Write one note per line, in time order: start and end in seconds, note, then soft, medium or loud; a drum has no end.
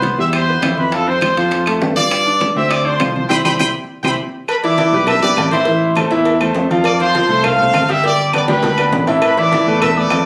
0.00 0.13 C2 medium
0.00 0.13 B3 medium
0.00 0.13 B4 medium
0.00 0.15 C5 medium
0.00 0.15 C6 medium
0.00 high bongo medium
0.00 high timbale medium
0.00 low timbale medium
0.04 high conga medium
0.18 0.60 E2 medium
0.18 0.43 G3 medium
0.18 0.44 G4 medium
0.18 0.26 E5 medium
0.18 0.26 E6 medium
0.18 high bongo soft
0.18 high conga soft
0.33 0.76 C5 medium
0.33 0.76 C6 medium
0.33 high bongo medium
0.33 high conga soft
0.33 high timbale medium
0.33 claves medium
0.48 0.61 B3 medium
0.48 0.61 B4 medium
0.48 high conga soft
0.62 1.31 F2 medium
0.62 0.87 E3 medium
0.62 0.88 E4 medium
0.62 high bongo medium
0.62 low bongo medium
0.62 high conga medium
0.62 high timbale medium
0.62 low timbale medium
0.62 claves medium
0.77 0.94 B4 medium
0.77 0.94 B5 medium
0.77 high bongo soft
0.77 high conga medium
0.92 1.05 F3 medium
0.92 1.05 F4 medium
0.92 1.09 A4 medium
0.92 1.09 A5 medium
0.92 high bongo medium
0.92 high conga soft
0.92 high timbale medium
1.07 1.32 C4 medium
1.07 1.32 C5 medium
1.07 1.68 C5 loud
1.07 1.68 C6 medium
1.07 high bongo soft
1.07 high conga soft
1.21 high bongo medium
1.21 high conga medium
1.21 high timbale medium
1.21 low timbale medium
1.21 claves medium
1.36 1.79 F2 medium
1.36 1.62 F3 medium
1.36 1.62 F4 medium
1.36 high conga soft
1.36 high timbale medium
1.51 high bongo medium
1.51 high conga soft
1.51 high timbale medium
1.66 1.91 A3 medium
1.66 1.92 A4 medium
1.66 high bongo soft
1.66 high conga soft
1.66 high timbale medium
1.66 claves medium
1.81 2.50 G2 medium
1.81 high bongo medium
1.81 low bongo medium
1.81 high conga medium
1.81 low timbale medium
1.97 2.21 F4 medium
1.97 2.52 D5 loud
1.97 2.21 F5 medium
1.97 2.53 D6 medium
1.97 high bongo soft
1.97 high conga medium
1.97 high timbale medium
2.11 high bongo medium
2.11 high conga soft
2.11 high timbale medium
2.11 claves medium
2.25 2.51 D4 medium
2.25 2.51 D5 medium
2.25 high bongo soft
2.25 high conga soft
2.41 high bongo medium
2.41 high conga medium
2.41 high timbale medium
2.41 low timbale medium
2.56 2.97 D2 medium
2.56 2.81 C4 medium
2.56 2.81 C5 medium
2.56 2.71 E5 medium
2.56 2.72 E6 medium
2.56 high bongo soft
2.56 high conga soft
2.70 2.86 D5 loud
2.70 2.86 D6 medium
2.70 high bongo medium
2.70 high conga soft
2.70 high timbale medium
2.70 claves medium
2.85 2.98 D4 medium
2.85 3.13 C5 medium
2.85 2.98 D5 medium
2.85 3.15 C6 medium
2.85 high conga soft
3.00 3.28 C2 medium
3.00 3.25 F3 medium
3.00 3.25 F4 medium
3.00 high bongo medium
3.00 low bongo medium
3.00 high conga medium
3.00 high timbale medium
3.00 low timbale medium
3.00 claves medium
3.14 3.29 C5 medium
3.14 3.28 C6 medium
3.14 high bongo soft
3.14 high conga medium
3.29 3.41 C2 medium
3.29 3.39 C4 loud
3.29 3.39 E4 medium
3.29 3.39 G4 loud
3.29 3.37 G5 loud
3.29 3.37 B5 medium
3.29 3.37 C6 medium
3.29 low bongo medium
3.29 high conga medium
3.29 high timbale loud
3.29 claves medium
3.45 3.56 C2 medium
3.45 3.55 C4 medium
3.45 3.54 E4 medium
3.45 3.54 G4 medium
3.45 3.52 G5 loud
3.45 3.52 B5 medium
3.45 3.52 C6 loud
3.45 low bongo medium
3.45 high conga medium
3.45 high timbale loud
3.45 claves loud
3.59 3.71 C2 medium
3.59 3.69 C4 medium
3.59 3.69 E4 loud
3.59 3.69 G4 medium
3.59 3.67 G5 loud
3.59 3.67 B5 loud
3.59 3.67 C6 medium
3.59 low bongo loud
3.59 high conga loud
3.59 high timbale medium
3.59 claves loud
4.03 4.15 C2 medium
4.03 4.13 C4 medium
4.03 4.14 E4 medium
4.03 4.13 G4 medium
4.03 4.11 G5 medium
4.03 4.11 B5 medium
4.03 4.11 C6 medium
4.03 low bongo loud
4.03 high conga loud
4.03 high timbale medium
4.03 claves medium
4.48 4.56 B4 medium
4.48 4.56 B5 medium
4.48 cowbell loud
4.48 high conga soft
4.48 low agogo loud
4.48 claves medium
4.63 4.76 E3 medium
4.63 4.76 E4 medium
4.63 5.05 D5 loud
4.63 4.76 E5 medium
4.63 5.05 D6 medium
4.63 cowbell medium
4.63 high conga soft
4.78 4.90 E3 medium
4.78 4.91 E4 medium
4.78 4.91 E5 medium
4.78 cowbell medium
4.78 high conga medium
4.78 low timbale medium
4.78 low agogo medium
4.93 5.34 B1 loud
4.93 5.18 G3 medium
4.93 5.18 G4 medium
4.93 5.18 B4 medium
5.07 5.23 E5 loud
5.07 5.23 E6 medium
5.07 cowbell loud
5.07 high conga soft
5.07 low conga medium
5.07 low agogo loud
5.07 claves medium
5.22 5.47 G3 medium
5.22 5.47 G4 medium
5.22 5.47 B4 medium
5.22 5.50 D5 medium
5.22 5.51 D6 medium
5.22 high conga soft
5.22 low conga medium
5.36 6.05 A1 loud
5.36 cowbell medium
5.36 high conga medium
5.36 low timbale medium
5.36 low agogo loud
5.36 claves medium
5.51 5.64 E3 medium
5.51 5.65 E4 medium
5.51 5.93 C5 medium
5.51 5.65 E5 medium
5.51 5.94 C6 medium
5.51 cowbell medium
5.51 high conga medium
5.51 low agogo medium
5.65 5.91 E3 medium
5.65 5.91 E4 medium
5.65 5.91 E5 medium
5.65 cowbell loud
5.65 high conga soft
5.82 high conga soft
5.95 6.09 A3 medium
5.95 6.09 A4 medium
5.95 6.09 C5 medium
5.95 cowbell medium
5.95 high conga loud
5.95 low timbale medium
5.95 low agogo loud
5.95 claves medium
6.11 6.52 E2 medium
6.11 6.36 E3 medium
6.11 6.36 E4 medium
6.11 6.36 E5 medium
6.11 cowbell medium
6.25 cowbell loud
6.25 high conga soft
6.25 low agogo medium
6.40 6.65 A3 medium
6.40 6.65 A4 medium
6.40 6.65 C5 medium
6.40 high conga soft
6.40 low agogo loud
6.40 claves medium
6.55 7.24 F2 medium
6.55 cowbell medium
6.55 high conga soft
6.55 low timbale medium
6.70 6.95 F3 medium
6.70 6.95 F4 medium
6.70 6.95 F5 medium
6.70 high conga medium
6.70 low agogo medium
6.84 6.99 D5 loud
6.84 6.99 D6 medium
6.84 cowbell loud
6.84 high conga soft
6.84 low agogo loud
6.84 claves medium
7.00 7.12 F3 medium
7.00 7.13 F4 loud
7.00 7.42 C5 loud
7.00 7.13 F5 medium
7.00 7.42 C6 medium
7.00 cowbell medium
7.00 high conga soft
7.15 7.27 F3 medium
7.15 7.27 F4 medium
7.15 7.27 F5 medium
7.15 cowbell medium
7.15 high conga loud
7.15 low timbale medium
7.15 low agogo medium
7.29 7.71 C2 loud
7.29 7.54 A3 medium
7.29 7.54 A4 medium
7.29 7.54 C5 medium
7.44 7.90 F5 loud
7.44 cowbell loud
7.44 high conga soft
7.44 low conga medium
7.44 low agogo loud
7.44 claves medium
7.59 7.84 A3 medium
7.59 7.84 A4 medium
7.59 7.84 C5 medium
7.59 high conga soft
7.59 low conga medium
7.74 8.42 G1 loud
7.74 cowbell medium
7.74 high conga loud
7.74 low timbale medium
7.74 low agogo loud
7.74 claves medium
7.89 8.01 G3 medium
7.89 8.02 G4 medium
7.89 8.05 E5 medium
7.89 8.02 G5 medium
7.89 8.04 E6 medium
7.89 cowbell medium
7.89 low agogo medium
8.04 8.28 G3 medium
8.04 8.28 G4 loud
8.04 8.33 D5 loud
8.04 8.29 G5 medium
8.04 8.32 D6 medium
8.04 cowbell loud
8.04 high conga soft
8.19 high conga soft
8.33 8.46 B3 medium
8.33 8.46 B4 medium
8.33 8.46 D5 medium
8.33 8.43 D5 medium
8.33 8.41 D6 medium
8.33 cowbell medium
8.33 high conga medium
8.33 low timbale medium
8.33 low agogo loud
8.33 claves medium
8.48 8.89 D2 medium
8.48 8.73 G3 medium
8.48 8.73 G4 medium
8.48 9.05 B4 loud
8.48 8.73 G5 medium
8.48 9.04 B5 medium
8.48 cowbell medium
8.48 high conga loud
8.48 high timbale loud
8.62 cowbell loud
8.62 low conga loud
8.62 high timbale medium
8.62 low agogo medium
8.78 9.03 B3 medium
8.78 9.03 B4 medium
8.78 9.03 D5 medium
8.78 low agogo loud
8.78 claves medium
8.91 9.61 A1 loud
8.91 cowbell medium
8.91 low conga loud
8.91 low timbale medium
9.07 9.32 E3 medium
9.07 9.32 E4 medium
9.07 9.32 E5 medium
9.07 low conga medium
9.07 low timbale medium
9.07 low agogo medium
9.22 9.37 B4 medium
9.22 9.36 B5 medium
9.22 cowbell loud
9.22 low agogo loud
9.22 claves medium
9.37 9.49 E3 loud
9.37 9.50 E4 medium
9.37 9.83 D5 loud
9.37 9.50 E5 medium
9.37 9.82 D6 medium
9.37 cowbell medium
9.37 high conga soft
9.52 9.65 E3 medium
9.52 9.65 E4 medium
9.52 9.65 E5 medium
9.52 cowbell medium
9.52 high conga medium
9.52 low timbale medium
9.52 low agogo medium
9.67 10.08 E2 medium
9.67 9.92 A3 medium
9.67 9.92 A4 medium
9.67 9.92 B4 medium
9.67 high conga soft
9.81 9.96 E5 loud
9.81 9.95 E6 medium
9.81 cowbell loud
9.81 high conga soft
9.81 low conga medium
9.81 low agogo loud
9.81 claves medium
9.97 10.21 A3 medium
9.97 10.21 A4 medium
9.97 10.21 B4 medium
9.97 10.26 D5 loud
9.97 10.26 D6 medium
10.10 10.26 F2 medium
10.10 cowbell medium
10.10 high conga medium
10.10 low timbale medium
10.10 low agogo loud
10.10 claves medium